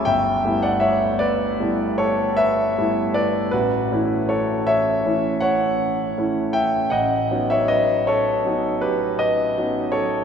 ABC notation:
X:1
M:9/8
L:1/16
Q:3/8=53
K:Amix
V:1 name="Grand piano"
[eg]3 [df] [ce]2 [Bd]4 [Ac]2 [Be]4 [Bd]2 | [FB]4 [Ac]2 [ce]4 [cf]6 [eg]2 | [^df]3 [ce] [Bd]2 [Ac]4 [GB]2 [Bd]4 [Ac]2 |]
V:2 name="Grand piano"
G,,,2 [G,A,B,E]6 [G,A,B,E]6 [G,A,B,E]4 | A,,,2 [E,A,CE]6 [E,A,CE]6 [E,A,CE]4 | A,,,2 [F,B,C^D]6 [F,B,CD]6 [F,B,CD]4 |]